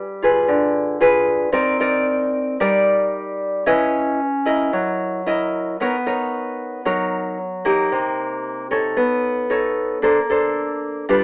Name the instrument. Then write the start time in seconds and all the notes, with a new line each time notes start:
nylon-string guitar
Already playing: G3
0.22 F4 G#4 B4
0.48 D3
1.00 F4 G#4 B4
1.52 C4 D#4 A#4 D5
1.80 D#4 A#4 D5
2.60 G3 D#4 A#4 D5
3.66 C#4 E4 B4 D#5
4.46 E4 A#4 D#5
4.73 F#3
5.26 E4 A#4 D#5
5.80 B3 D#4 A#4 C#5
6.06 D#4 A#4 C#5
6.85 F#3 D#4 A#4 C#5
7.65 A#3 D#4 G4
7.92 C3
8.71 D#4 A4 C#5
8.97 B3
9.50 D#4 A4 C#5
10.02 A#3 D4 A4 C5
10.30 D4 A4 C5
11.09 G3 D4 F4 B4